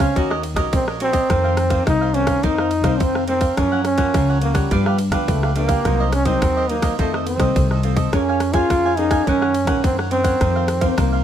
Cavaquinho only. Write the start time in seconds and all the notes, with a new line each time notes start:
0.00 C5 C#5 F5
0.16 F#4 A#4 C#5 D#5
0.30 A#4 C#5 D#5
0.43 muted cavaquinho stroke
0.56 A#4 C#5 D#5
0.87 A#4 C#5 D#5
1.00 F#4 A#4 C#5 D#5
1.12 A#4 C#5 D#5
1.29 D#4 A#4 C5 F5
1.44 A#4 C5 F5
1.57 muted cavaquinho stroke
1.70 A#4 C5 F5
1.86 D#4 A#4 C5 F5
2.01 A#4 C5 F5
2.27 A#4 C5 F5
2.43 D#4 A#4 C5 F5
2.58 A#4 C5 F5
2.70 muted cavaquinho stroke
2.84 A#4 C5 F5
3.15 A#4 C5 F5
3.27 D#4 A#4 C5 F5
3.41 A#4 C5 F5
3.57 F4 A#4 C#5 F#5
3.72 A#4 C#5 F#5
3.84 muted cavaquinho stroke
3.97 A#4 C#5 F#5
4.14 F4 A#4 C#5 F#5
4.29 A#4 C#5 F#5
4.54 A#4 C#5 F#5
4.71 D4 G4 B4 F5
4.86 G4 B4 F5
4.98 muted cavaquinho stroke
5.12 G4 B4 F5
5.43 G4 B4 F5
5.55 D4 G4 B4 F5
5.68 G4 B4 F5
5.85 F#4 A#4 C5 D#5
6.00 A#4 C5 D#5
6.12 muted cavaquinho stroke
6.25 A#4 C5 D#5
6.42 F#4 A#4 C5 D#5
6.57 A#4 C5 D#5
6.82 A#4 C5 D#5
6.99 F4 A4 C5 D#5
7.13 A4 C5 D#5
7.27 muted cavaquinho stroke
7.40 A4 C5 D#5
7.71 A4 C5 D#5
7.84 F4 A4 C5 D#5
7.97 A4 C5 D#5
8.14 A#4 C#5 F5 G#5
8.29 C#5 F5 G#5
8.41 muted cavaquinho stroke
8.54 C#5 F5 G#5
8.70 A#4 C#5 F5 G#5
8.85 C#5 F5 G#5
9.11 C#5 F5 G#5
9.27 D#4 A#4 C#5 F#5
9.41 A#4 C#5 F#5
9.54 muted cavaquinho stroke
9.67 A#4 C#5 F#5
9.98 A#4 C#5 F#5
10.10 D#4 A#4 C#5 F#5
10.24 A#4 C#5 F#5
10.40 D#4 A#4 C5 F5
10.56 A#4 C5 F5
10.68 muted cavaquinho stroke
10.81 A#4 C5 F5
10.97 D#4 A#4 C5 F5
11.12 A#4 C5 F5